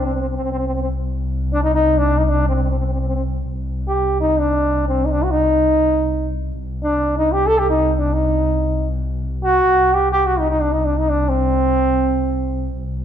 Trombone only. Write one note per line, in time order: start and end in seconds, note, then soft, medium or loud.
0.06 0.12 C4 soft
0.14 0.20 C4 soft
0.21 0.27 C4 soft
0.29 0.35 C4 soft
0.36 0.42 C4 soft
0.44 0.50 C4 soft
0.52 0.57 C4 medium
0.58 0.65 C4 soft
0.67 0.73 C4 soft
0.74 0.80 C4 soft
0.82 0.88 C4 soft
1.53 1.62 D4 medium
1.63 1.74 D#4 medium
1.74 1.99 D#4 medium
1.98 2.20 D4 medium
2.18 2.25 D#4 medium
2.25 2.30 D#4 soft
2.29 2.47 D4 medium
2.49 2.54 C4 medium
2.55 2.62 C4 soft
2.63 2.70 C4 soft
2.70 2.77 C4 soft
2.79 2.85 C4 soft
2.86 2.93 C4 soft
2.93 3.00 C4 soft
3.00 3.07 C4 soft
3.08 3.15 C4 soft
3.15 3.22 C4 soft
3.88 4.16 G4 medium
4.20 4.40 D#4 medium
4.38 4.88 D4 medium
4.88 5.07 C4 medium
5.05 5.13 D#4 soft
5.11 5.25 D4 medium
5.24 5.33 F#4 medium
5.31 6.28 D#4 medium
6.83 7.15 D4 medium
7.17 7.34 D#4 medium
7.32 7.48 G4 medium
7.47 7.60 A4 medium
7.58 7.69 G4 medium
7.70 7.95 D#4 medium
7.95 8.15 D4 medium
7.95 8.00 D#4 soft
8.13 8.88 D#4 medium
9.44 9.96 F#4 medium
9.94 10.09 G4 medium
10.12 10.28 G4 medium
10.26 10.40 F#4 medium
10.39 10.49 D#4 medium
10.51 10.63 D#4 medium
10.61 10.74 D4 medium
10.72 10.86 D#4 medium
10.85 11.00 D4 medium
10.98 11.11 D#4 medium
11.09 11.30 D4 medium
11.29 12.68 C4 medium